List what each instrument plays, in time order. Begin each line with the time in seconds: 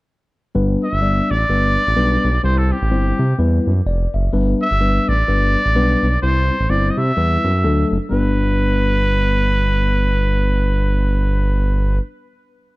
0.55 analog synth bass G1, tine electric piano G3 B3 D4 B4
0.84 trumpet E5
0.93 analog synth bass G1
1.01 tine electric piano G3 B3 D4 D5
1.30 analog synth bass A1, trumpet D5
1.49 analog synth bass G1, tine electric piano G3 B3 D4 B4
1.87 analog synth bass A1
1.96 analog synth bass B1, tine electric piano G3 B3 D4 B4
2.24 analog synth bass B1
2.43 analog synth bass C2, tine electric piano G3 C4 E4 C5, trumpet C5
2.58 trumpet A4
2.72 trumpet G4
2.82 analog synth bass A1
2.91 analog synth bass G1, tine electric piano G3 C4 E4 C5
3.19 analog synth bass C3
3.38 analog synth bass E2, tine electric piano G3 B3 E4 B4
3.67 analog synth bass F#2
3.86 analog synth bass F1, tine electric piano D5
4.14 analog synth bass F#1, tine electric piano E5
4.33 analog synth bass G1, tine electric piano G3 B3 D4 B4
4.62 trumpet E5
4.71 analog synth bass G1
4.81 tine electric piano G3 B3 D4 B4
5.08 analog synth bass A1, trumpet D5
5.28 analog synth bass G1, tine electric piano G3 B3 D4 B4
5.66 analog synth bass A1
5.75 analog synth bass B1, tine electric piano G3 B3 D4 B4
6.03 analog synth bass B1
6.22 analog synth bass C2, tine electric piano G3 C4 E4 C5, trumpet C5
6.60 analog synth bass A1
6.70 analog synth bass G1, tine electric piano G3 C4 E4 C5, trumpet D5
6.90 trumpet D#5
6.97 analog synth bass C3, trumpet E5
7.17 analog synth bass E2, tine electric piano G3 B3 E4 B4
7.44 analog synth bass F#2
7.64 analog synth bass D2, tine electric piano F#3 A3 D4 A4
7.91 analog synth bass F#1
8.09 analog synth bass G1, tine electric piano G3 B3 D4, trumpet B4
8.14 tine electric piano B4